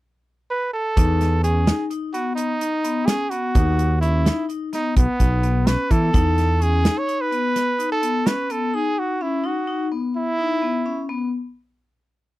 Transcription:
0.50 0.72 B4 medium
0.73 1.40 A4 medium
0.97 1.70 E2 medium
0.97 1.34 D#4 medium
0.97 kick medium
0.97 closed hi-hat medium
1.21 snare soft
1.21 closed hi-hat soft
1.43 1.62 C#4 medium
1.43 1.87 G#4 medium
1.43 closed hi-hat medium
1.67 1.85 D#4 medium
1.67 snare medium
1.67 closed hi-hat medium
1.91 2.09 D#4 medium
1.91 closed hi-hat medium
2.13 2.51 B3 medium
2.13 2.34 F#4 medium
2.13 closed hi-hat soft
2.35 3.08 D#4 medium
2.35 closed hi-hat medium
2.61 2.80 D#4 medium
2.61 closed hi-hat medium
2.84 3.03 B3 medium
2.84 closed hi-hat medium
3.06 3.26 C#4 medium
3.06 3.32 G#4 medium
3.06 snare medium
3.06 closed hi-hat medium
3.30 3.50 B3 medium
3.30 4.00 F#4 medium
3.30 closed hi-hat medium
3.55 4.29 D#2 medium
3.55 3.92 D#4 medium
3.55 kick medium
3.55 closed hi-hat medium
3.79 closed hi-hat medium
4.01 4.21 C#4 medium
4.01 4.45 E4 medium
4.01 closed hi-hat medium
4.26 4.44 D#4 medium
4.26 snare medium
4.26 closed hi-hat medium
4.49 4.68 D#4 medium
4.49 closed hi-hat soft
4.73 5.10 B3 medium
4.73 4.95 D#4 medium
4.73 snare soft
4.73 closed hi-hat soft
4.96 5.06 B1 medium
4.96 5.69 B3 medium
4.96 kick medium
4.96 closed hi-hat medium
5.20 5.75 B1 medium
5.20 5.38 D#4 medium
5.20 kick medium
5.20 closed hi-hat medium
5.43 5.62 B3 medium
5.43 closed hi-hat medium
5.67 5.85 C#4 medium
5.67 5.92 B4 medium
5.67 snare medium
5.67 closed hi-hat medium
5.90 6.09 E3 medium
5.90 6.09 B3 medium
5.90 6.64 A4 medium
5.90 kick medium
5.90 closed hi-hat medium
6.13 6.88 E2 medium
6.13 6.51 D#4 medium
6.13 kick medium
6.13 closed hi-hat medium
6.38 snare soft
6.38 closed hi-hat medium
6.60 6.79 C#4 medium
6.60 7.00 G#4 medium
6.60 closed hi-hat medium
6.84 7.03 D#4 medium
6.84 snare medium
6.84 closed hi-hat medium
6.98 7.22 C#5 medium
7.07 7.26 D#4 medium
7.07 closed hi-hat medium
7.21 7.91 B4 medium
7.31 7.69 B3 medium
7.31 closed hi-hat soft
7.56 snare soft
7.56 closed hi-hat medium
7.79 7.97 D#4 medium
7.79 closed hi-hat medium
7.92 8.28 A4 medium
8.02 8.21 B3 medium
8.02 closed hi-hat soft
8.26 8.45 C#4 medium
8.26 8.53 B4 medium
8.26 snare medium
8.26 closed hi-hat medium
8.50 8.69 B3 medium
8.50 8.76 A4 medium
8.50 closed hi-hat medium
8.74 9.11 D#4 medium
8.74 9.00 G#4 medium
8.99 9.24 F#4 medium
9.21 9.39 C#4 medium
9.21 9.48 E4 medium
9.44 9.63 D#4 medium
9.44 9.89 F#4 medium
9.67 9.86 D#4 medium
9.91 10.29 B3 medium
10.16 11.07 E4 loud
10.39 10.58 D#4 medium
10.62 10.81 B3 medium
10.86 11.05 C#4 medium
11.09 11.28 B3 medium

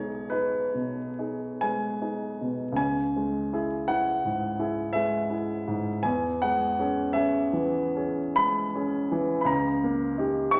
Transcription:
0.00 2.71 B1 soft
0.00 0.15 G#3 soft
0.00 0.27 D#4 soft
0.00 0.27 G#4 soft
0.00 0.29 C#5 medium
0.00 2.80 D#5 medium
0.30 0.69 D#4 soft
0.30 0.69 G#4 soft
0.30 1.61 B4 medium
0.74 1.46 B2 soft
1.19 1.58 D#4 soft
1.19 1.58 G#4 soft
1.61 2.25 G#3 soft
1.61 2.75 G#5 medium
2.02 2.36 D#4 soft
2.02 2.36 G#4 soft
2.41 2.78 B2 soft
2.72 5.97 C#2 soft
2.76 3.88 G#5 medium
3.16 3.75 G#3 soft
3.53 3.85 E4 soft
3.53 3.85 G#4 soft
3.88 4.21 E4 soft
3.88 4.21 G#4 soft
3.88 4.94 F#5 medium
4.24 4.81 G#2 soft
4.59 4.91 E4 soft
4.59 4.91 G#4 soft
4.93 5.52 G#3 soft
4.93 6.03 E5 medium
5.30 5.63 E4 soft
5.30 5.63 G#4 soft
5.67 6.05 G#2 soft
6.03 9.44 E2 soft
6.03 6.41 G#5 medium
6.42 7.00 G#3 soft
6.42 7.14 F#5 medium
6.79 7.11 C#4 soft
6.79 7.11 G#4 soft
7.13 7.49 C#4 soft
7.13 7.49 G#4 soft
7.13 8.36 E5 medium
7.53 8.20 E3 soft
7.96 8.33 C#4 soft
7.96 8.33 G#4 soft
8.36 8.97 G#3 soft
8.36 9.40 B5 medium
8.75 9.08 C#4 soft
8.75 9.08 G#4 soft
9.11 9.48 E3 soft
9.41 10.60 C#2 medium
9.41 9.48 B5 soft
9.46 10.53 A#5 medium
9.84 10.39 A#3 soft
10.18 10.50 D#4 soft
10.18 10.50 G4 soft
10.51 10.60 D#4 soft
10.51 10.60 G4 soft
10.51 10.60 C#6 medium

